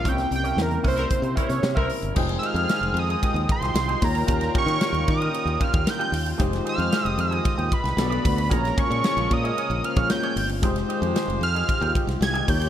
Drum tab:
CC |----------------|x---------------|----------------|----------------|
RD |----------------|-xxxxxxxxxxxxxxx|xxxxxxxxxxxxxxxx|xxxxxxxxxxxxxxxx|
HH |xxxx-xoxxxxx--ox|--------------o-|p-------------o-|p-------------o-|
SD |-o--o------oo---|----o------oo---|-o--o-------o---|-o--o------oo---|
BD |o-----o-o-o--o--|o-------o-o---o-|o-o---o---oo----|o-------o-o---o-|

CC |----------------|----------------|
RD |xxxxxxxxxxxxxxxx|xxxxxxxxxxxxxxxx|
HH |p-------------o-|p-------------o-|
SD |-o--o------oo---|-o--o------oo---|
BD |o-o---o----o----|o-------o-o---o-|